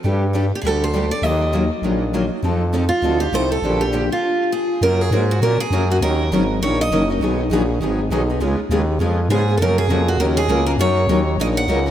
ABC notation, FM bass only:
X:1
M:4/4
L:1/8
Q:"Swing" 1/4=201
K:Bb
V:1 name="FM bass" clef=bass
G,,4 D,,4 | E,,4 B,,,4 | F,,4 D,,2 C,,2 | B,,,4 z4 |
[K:F#] F,,2 G,,2 A,, A,, F,,2 | D,,2 G,,,2 A,,,2 F,,,2 | B,,,2 A,,,2 G,,,2 B,,,2 | C,, C,, D,,2 E,,2 G,,2 |
F,,2 E,,2 D,,2 C,,2 | F,,2 D,,2 A,,,2 C,,2 |]